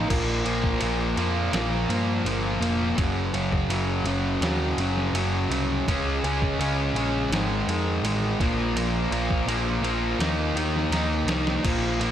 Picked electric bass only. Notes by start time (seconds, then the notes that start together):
0.11 A#1
0.45 A#1
0.82 A#1
1.17 F2
1.53 A#1
1.88 G2
2.25 G1
2.60 F1
2.98 F#1
3.33 F#1
3.68 F#1
4.04 F#1
4.41 D#2
4.78 F#1
5.13 F#1
5.50 C2
5.88 C#2
6.23 C#2
6.59 C#2
6.93 A#1
7.30 G#1
7.68 F2
8.02 A1
8.41 A#1
8.73 A#1
9.11 A#1
9.46 A#1
9.82 A#1
10.19 D#2
10.54 D#2
10.90 D#2
11.25 C2
11.65 A#1
11.98 A#1